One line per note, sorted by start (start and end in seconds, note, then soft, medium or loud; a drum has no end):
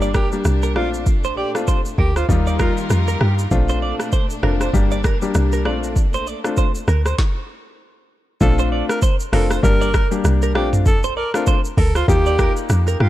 0.00 0.26 G1 loud
0.00 2.25 A#2 medium
0.00 0.75 G3 medium
0.00 2.25 D4 medium
0.00 0.11 D5 medium
0.00 shaker soft
0.14 0.30 G4 medium
0.14 0.27 A#4 medium
0.14 kick medium
0.14 cross-stick loud
0.14 shaker soft
0.32 0.73 G3 medium
0.32 0.73 A#3 medium
0.32 0.73 D4 medium
0.32 0.73 G4 medium
0.32 shaker soft
0.45 0.77 C2 loud
0.45 cross-stick medium
0.45 shaker medium
0.63 0.72 A#4 medium
0.63 shaker medium
0.75 1.44 A#1 loud
0.75 1.04 A3 medium
0.75 2.27 A3 medium
0.75 1.04 C4 medium
0.75 1.04 D4 medium
0.75 1.04 F4 medium
0.75 0.91 F4 medium
0.75 0.89 D5 medium
0.75 cross-stick medium
0.94 shaker medium
1.06 kick loud
1.06 shaker medium
1.24 1.34 C5 medium
1.24 shaker soft
1.37 1.52 G4 medium
1.37 1.50 D5 medium
1.55 1.74 A3 medium
1.55 1.74 C4 medium
1.55 1.74 D4 medium
1.55 1.74 F4 medium
1.55 cross-stick medium
1.55 shaker medium
1.67 1.80 C5 medium
1.67 kick medium
1.67 shaker medium
1.85 shaker medium
1.98 2.25 D2 medium
1.98 2.14 G4 medium
1.98 2.11 A#4 medium
1.98 kick medium
2.16 2.27 F4 medium
2.16 2.25 C5 medium
2.16 cross-stick medium
2.16 shaker medium
2.29 2.70 D#2 loud
2.29 3.50 D#3 medium
2.29 3.43 G3 medium
2.29 3.43 A#3 medium
2.29 3.50 D#4 medium
2.29 3.43 D#4 medium
2.29 3.50 F4 medium
2.29 3.43 F4 loud
2.29 3.50 G4 medium
2.29 3.50 A#4 medium
2.29 kick medium
2.29 shaker medium
2.47 2.56 D5 medium
2.47 shaker soft
2.59 2.75 F4 medium
2.59 2.72 A#4 medium
2.59 kick medium
2.59 cross-stick loud
2.59 shaker soft
2.77 shaker medium
2.90 3.16 F2 medium
2.90 cross-stick medium
2.90 shaker medium
3.08 3.17 A#4 medium
3.08 shaker medium
3.21 3.47 G2 medium
3.21 3.33 G4 medium
3.21 cross-stick medium
3.39 shaker medium
3.51 3.93 A#1 loud
3.51 5.64 A#2 medium
3.51 4.08 A3 medium
3.51 4.73 A3 medium
3.51 4.08 C4 medium
3.51 4.09 D4 medium
3.51 7.15 D4 medium
3.51 4.09 F4 loud
3.51 kick loud
3.51 shaker medium
3.69 3.78 C5 medium
3.69 shaker soft
3.82 3.95 D5 medium
4.00 cross-stick medium
4.00 shaker medium
4.12 4.25 C5 medium
4.12 kick medium
4.12 shaker medium
4.30 shaker medium
4.43 4.69 F1 loud
4.43 4.65 A3 medium
4.43 4.66 C4 medium
4.43 4.66 D4 medium
4.43 4.66 F4 medium
4.43 4.56 A#4 medium
4.43 cross-stick medium
4.61 4.70 C5 medium
4.61 cross-stick medium
4.61 shaker medium
4.73 5.15 G1 loud
4.73 4.96 G3 medium
4.73 5.65 G3 medium
4.73 4.96 A#3 medium
4.73 4.96 D4 medium
4.73 4.96 G4 loud
4.73 kick medium
4.73 shaker medium
4.92 5.01 D5 medium
4.92 shaker soft
5.04 5.17 A#4 medium
5.04 kick medium
5.04 cross-stick loud
5.04 shaker soft
5.22 5.62 G3 medium
5.22 5.62 A#3 medium
5.22 5.62 D4 medium
5.22 5.63 G4 medium
5.22 shaker medium
5.34 5.67 C2 loud
5.34 cross-stick medium
5.34 shaker medium
5.52 5.62 A#4 medium
5.52 shaker medium
5.65 6.34 A#1 loud
5.65 5.94 A3 medium
5.65 7.17 A3 medium
5.65 7.17 A#3 medium
5.65 5.94 C4 medium
5.65 5.94 D4 medium
5.65 5.94 F4 medium
5.65 5.78 D5 medium
5.65 cross-stick medium
5.83 shaker medium
5.96 kick loud
5.96 shaker medium
6.14 6.27 C5 medium
6.14 shaker soft
6.27 6.40 D5 medium
6.27 shaker medium
6.44 6.64 A3 medium
6.44 6.64 C4 medium
6.44 6.64 D4 medium
6.44 6.64 F4 medium
6.44 cross-stick medium
6.44 shaker medium
6.57 6.70 C5 medium
6.57 kick medium
6.57 shaker medium
6.75 shaker medium
6.88 7.14 D2 medium
6.88 7.01 A#4 medium
6.88 cross-stick medium
6.88 shaker medium
7.06 7.15 C5 medium
7.06 cross-stick medium
7.06 shaker medium
7.18 kick loud
7.18 snare medium
8.41 8.83 A#1 loud
8.41 8.98 A3 medium
8.41 8.98 C4 medium
8.41 8.98 D4 medium
8.41 8.98 F4 loud
8.41 8.56 A4 loud
8.41 kick loud
8.41 shaker medium
8.59 8.68 C5 medium
8.59 shaker medium
8.72 8.85 D5 medium
8.89 9.00 A#4 medium
8.89 cross-stick medium
8.89 shaker medium
9.02 9.15 C5 medium
9.02 kick loud
9.02 shaker medium
9.20 shaker medium
9.32 9.59 F1 medium
9.32 9.55 A3 medium
9.32 9.55 C4 medium
9.32 9.55 D4 medium
9.32 9.55 F4 medium
9.32 9.48 A4 medium
9.32 9.46 A#4 medium
9.32 cross-stick medium
9.32 open hi-hat medium
9.51 9.60 C5 medium
9.51 cross-stick medium
9.51 shaker medium
9.63 10.05 G1 loud
9.63 9.86 G3 medium
9.63 9.86 A#3 medium
9.63 9.86 D4 medium
9.63 9.86 G4 loud
9.63 10.09 A#4 loud
9.63 kick medium
9.63 shaker medium
9.81 9.91 D5 medium
9.81 shaker soft
9.94 10.07 A#4 medium
9.94 kick medium
9.94 cross-stick loud
9.94 shaker soft
10.11 10.52 G3 medium
10.11 10.52 A#3 medium
10.11 10.52 D4 medium
10.11 10.52 G4 medium
10.11 shaker medium
10.24 10.57 C2 loud
10.24 cross-stick medium
10.24 shaker medium
10.42 10.52 A#4 medium
10.42 shaker medium
10.54 11.23 A#1 loud
10.54 10.83 A3 medium
10.54 10.83 C4 medium
10.54 10.84 D4 medium
10.54 10.84 F4 medium
10.54 10.70 G4 medium
10.54 10.68 D5 medium
10.54 cross-stick loud
10.73 mid tom medium
10.73 shaker medium
10.86 11.01 A4 loud
10.86 kick loud
10.86 shaker medium
11.03 11.13 C5 medium
11.03 shaker medium
11.17 11.32 A#4 medium
11.17 11.29 D5 medium
11.34 11.53 A3 medium
11.34 11.54 C4 medium
11.34 11.54 D4 medium
11.34 11.54 F4 medium
11.34 11.45 A#4 medium
11.34 cross-stick medium
11.34 shaker medium
11.47 11.60 C5 medium
11.47 kick loud
11.47 shaker medium
11.65 shaker medium
11.77 12.04 D2 loud
11.77 11.93 A4 medium
11.77 11.91 A#4 medium
11.77 kick medium
11.77 open hi-hat medium
11.95 12.07 F4 medium
11.95 12.05 C5 medium
11.95 cross-stick medium
11.95 shaker medium
12.08 12.50 D#2 loud
12.08 13.09 A#3 medium
12.08 13.09 D#4 medium
12.08 13.09 F4 medium
12.08 13.09 G4 loud
12.08 12.54 G4 loud
12.08 kick medium
12.08 shaker medium
12.26 12.36 D5 medium
12.26 shaker soft
12.39 12.52 A#4 medium
12.39 kick medium
12.39 cross-stick loud
12.39 shaker soft
12.57 shaker medium
12.69 12.96 F2 loud
12.69 cross-stick medium
12.69 shaker medium
12.87 12.97 A#4 medium
12.87 shaker medium
13.00 13.09 G2 loud
13.00 13.09 F4 medium
13.00 13.09 G4 medium
13.00 cross-stick medium